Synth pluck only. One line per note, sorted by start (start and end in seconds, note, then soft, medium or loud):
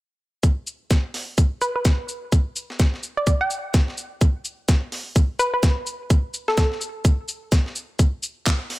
1.62 1.71 B4 medium
1.76 1.82 B4 medium
3.17 3.23 D5 medium
3.27 3.36 D5 medium
3.41 3.88 G5 medium
5.39 5.48 B4 medium
5.54 5.60 B4 medium
6.48 6.54 A4 medium
6.58 6.67 A4 medium